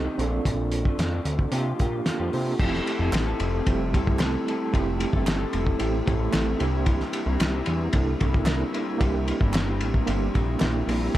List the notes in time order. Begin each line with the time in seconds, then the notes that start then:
Already playing: C4 D#4 G4 A4
0.05 F2 C3 D#3 A3 D#4
0.18 A#1 A#2 F3 A3 C4 D4 F4 A4, closed hi-hat
0.45 A#1, kick, closed hi-hat
0.72 closed hi-hat
0.85 F3 A3 D4, kick
0.99 F2, snare, closed hi-hat
1.12 A#2 F3 A3 D4
1.25 D2, closed hi-hat
1.39 kick
1.51 C3 F3 A#3 D4 F4 G4, closed hi-hat
1.79 A#2 F3 A#3 F4 G4, kick, closed hi-hat
2.05 F2 A#3 D4 F4 A4, snare, closed hi-hat
2.19 F2 C3 F3 A#3 F4 G4
2.33 C3, open hi-hat
2.59 F1 F3 A3 C4 E4 G4 A4, kick, crash
2.74 snare
2.87 ride
2.99 F1 E4 A4
3.04 C4
3.12 A1, snare, clap, ride
3.27 C4 E4 A4
3.40 F1, ride
3.66 F1 G3 C4 E4 G4, kick, ride
3.72 A3
3.93 C2 A3 C4 E4 A4, kick, ride
4.07 kick
4.19 A3 C4 E4 A4, snare, clap, ride
4.46 A3 C4 E4 A4, ride
4.72 F1 F3 A3 C4 E4 G4 A4, kick, ride
5.00 ride
5.13 G1 C4 E4 A4, kick
5.27 snare, clap, ride
5.39 C4 E4 A4
5.53 F1, ride
5.67 kick
5.79 A1 A3 C4 E4 G4, ride
6.06 A1 A3 C4 E4 A4, kick, ride
6.31 A1 A3 C4 E4 A4, snare, clap, ride
6.36 A4
6.57 C2 G3 A#3 C4 D4 E4 G4, ride
6.62 E4 A#4
6.85 C3 E3 G3 C4 E4 A#4, kick, ride
7.00 snare
7.13 ride
7.26 C2 G3 C4 E4 A#4
7.40 C2, snare, clap, ride
7.54 G3 C4 E4 A#4
7.66 E2, ride
7.92 C2 A#3 D4 E4 A4, kick, ride
8.20 C2 G3 C4 E4 A#4, kick, ride
8.34 kick
8.45 G3 A#3 C4 D4 E4 A#4, snare, clap, ride
8.49 A#4
8.72 G3 C4 E4 A#4, ride
8.98 C2 C3 E3 G3 A#3 C4 D4 E4 G4 A#4, kick, ride
9.28 ride
9.39 G1 G3 C4 E4 A#4, kick
9.54 snare, clap, ride
9.67 G3 C4 E4 A#4
9.81 A1, ride
9.94 kick
10.07 G1 A#3 D4 E4 G4, ride
10.34 A#1 G3 C4 E4 A#4, kick, ride
10.60 A#1 G3 A#3 C4 D4 E4 G4, snare, clap, ride
10.64 A#4
10.87 A#1 G3 C4 E4 A#4, open hi-hat, ride
11.13 F3 A3 C4, kick